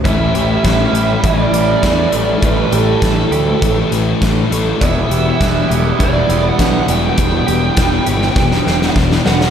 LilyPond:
<<
  \new Staff \with { instrumentName = "Lead electric guitar" } { \time 4/4 \key a \mixolydian \tempo 4 = 101 e''2 d''2 | b'8 a'2 r4. | e''4. r8 d''8. fis''8. g''8 | g''2. r8 fis''8 | }
  \new Staff \with { instrumentName = "Clean electric guitar" } { \time 4/4 \key a \mixolydian e8 g'4 g'8 a8 e4 a8 | e8 g'4 g'8 a8 e4 a8 | e8 g'8 d'8 g'8 b8 e8 d'8 b8 | e8 g'8 d'8 g'8 b8 e8 d'8 b8 | }
  \new Staff \with { instrumentName = "Overdriven electric guitar" } { \clef bass \time 4/4 \key a \mixolydian <a, e g cis' e'>1~ | <a, e g cis' e'>1 | <e g b e'>1~ | <e g b e'>1 | }
  \new Staff \with { instrumentName = "Distorted electric guitar" } { \clef bass \time 4/4 \key a \mixolydian <a, e a>8 <e a>4. <a, e a>4 <a, e a>8 <e a>8 | <a, e a>8 <e a>4. <a, e a>4 <a, e a>8 <e a>8 | <e, b, e>8 <b, e>4. <e, b, e>4 <e, b, e>8 <b, e>8 | <e, b, e>8 <b, e>4. <e, b, e>4 <e, b, e>8 <b, e>8 | }
  \new Staff \with { instrumentName = "Picked electric bass" } { \clef bass \time 4/4 \key a \mixolydian a,,8 a,,8 a,,8 a,,8 a,,8 a,,8 e,8 a,,8 | a,,8 a,,8 a,,8 d,8 a,,8 a,,8 a,,8 a,,8 | e,,8 e,,8 e,,8 e,,8 e,,8 e,,8 b,,8 e,,8 | e,,8 e,,8 e,,8 g,,8 e,,8 e,,8 e,,8 e,,8 | }
  \new DrumStaff \with { instrumentName = "Drums" } \drummode { \time 4/4 <hh bd>8 hh8 <hh bd sn>8 hh8 <hh bd>8 hh8 <hh bd sn>8 hh8 | <hh bd>8 hh8 <hh bd sn>8 hh8 <hh bd>8 hh8 <hh bd sn>8 hh8 | <hh bd>8 hh8 <hh bd sn>8 hh8 <hh bd>8 hh8 <hh bd sn>8 hh8 | <hh bd>8 hh8 <hh bd sn>8 hh16 sn16 <bd sn>16 sn16 sn16 sn16 <bd sn>16 sn16 sn16 sn16 | }
>>